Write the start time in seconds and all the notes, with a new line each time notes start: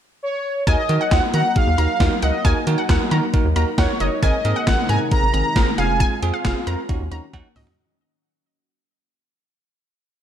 0.23 C#5
0.67 D#2 F#3 A#3 D#4 F#4 A#4 D#5 G#5, kick, closed hi-hat
0.89 D#3 D#4 F#4 A#4, closed hi-hat
1.01 F#5
1.11 D#2 D#4 F#4 C5 F#5, kick, snare, closed hi-hat
1.34 D#3 D#4 F#4 A#4 F#5 A#5, closed hi-hat
1.56 D#4 F#4 G#4 F5, kick, closed hi-hat
1.67 D#2
1.78 D#2 D#4 F#4 A#4 A#5, closed hi-hat
2.00 D#2 D#4 F#4 A#4, kick, snare, closed hi-hat
2.22 C#2 D#4 F#4 A#4 D#5 F#5, closed hi-hat
2.45 D#2 D#4 F#4 A#4 G#5, kick, closed hi-hat
2.67 D#3 D#4 F#4 A#4, closed hi-hat
2.78 F#5
2.89 D#2 D#4 F#4 A#4 F#5, kick, snare, closed hi-hat
3.11 D#3 D#4 F#4 A#4 A#5, closed hi-hat
3.34 D#4 F#4 A#4, kick, closed hi-hat
3.45 D#2
3.56 D#2 D#4 F#4 A#4 A#5, closed hi-hat
3.78 D#2 D#4 F#4 A#4 C#5 F#5, kick, snare, closed hi-hat
4.00 F#1 D#4 F#4 A#4 D#5, closed hi-hat
4.23 G#1 C3 D#3 G#3 C4 G#4 A#4 D#5 G#5, kick, closed hi-hat
4.45 G#2 C4 G#4 A#4, closed hi-hat
4.56 F#5
4.67 G#1 C4 G#4 A#4 F#5, kick, snare, closed hi-hat
4.89 G#2 C4 G#4 A#4 G#5 A#5, closed hi-hat
5.11 C4 G#4 A#4 A#5, kick, closed hi-hat
5.23 G#1
5.34 G#1 C4 G#4 A#4 A#5, closed hi-hat
5.56 G#1 C4 G#4 A#4, kick, snare, closed hi-hat
5.78 F1 C4 F4 G#4 F5 G#5, closed hi-hat
6.00 G#5, kick, closed hi-hat
6.23 F2 C4 F4 G#4, closed hi-hat
6.34 F5
6.45 F1 C4 F4 G#4 F5, kick, snare, closed hi-hat
6.67 F2 C4 F4 A#4 A#5, closed hi-hat
6.89 D#2 D#3 F#3 A#3 C#4 D#4 F#4, kick, closed hi-hat
7.00 D#2
7.11 D#2 C#4 D#4 F#4 A#5, closed hi-hat
7.33 D#2 C#4 D#4 F#4 F#5, kick, closed hi-hat, high tom
7.56 C#2 C#4 D#4 F#4 D#5, mid tom, open hi-hat
7.67 floor tom